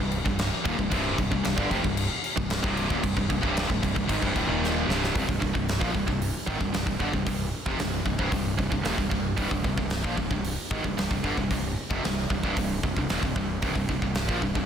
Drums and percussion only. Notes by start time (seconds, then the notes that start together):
0.12 crash
0.26 kick
0.39 snare, crash
0.65 kick, crash
0.79 kick
0.91 kick, crash
1.18 kick, crash
1.32 kick
1.45 snare, crash
1.58 kick
1.71 kick, crash
1.84 kick
1.97 crash
2.24 crash
2.37 kick
2.50 snare, crash
2.64 kick
2.77 crash
2.90 kick
3.04 kick, crash
3.17 kick
3.30 kick, crash
3.43 kick
3.57 snare, crash
3.70 kick
3.83 kick, crash
3.96 kick
4.09 kick, crash
4.22 kick
4.36 kick, crash
4.64 snare
4.90 snare
5.04 snare
5.15 kick, open hi-hat
5.29 kick
5.42 kick
5.55 kick
5.69 snare, open hi-hat
5.81 kick
5.95 kick
6.08 kick
6.22 open hi-hat
6.47 kick
6.61 kick
6.74 snare, open hi-hat
6.87 kick
7.00 kick
7.13 kick
7.27 kick, open hi-hat
7.66 kick
7.79 snare, open hi-hat
8.06 kick
8.19 kick
8.32 kick, open hi-hat
8.59 kick
8.72 kick
8.85 snare, open hi-hat
8.98 kick
9.11 kick
9.37 kick, open hi-hat
9.51 kick
9.64 kick
9.78 kick
9.90 snare, open hi-hat
10.04 kick
10.17 kick
10.31 kick
10.44 open hi-hat
10.71 kick
10.84 kick
10.98 snare, open hi-hat
11.11 kick
11.24 kick
11.37 kick
11.51 kick, open hi-hat
11.91 kick
12.04 snare, open hi-hat
12.30 kick
12.43 kick
12.57 kick, open hi-hat
12.83 kick
12.97 kick
13.09 snare, open hi-hat
13.23 kick
13.36 kick
13.62 kick, open hi-hat
13.76 kick
13.89 kick
14.02 kick
14.15 snare, open hi-hat
14.29 kick
14.42 kick
14.55 kick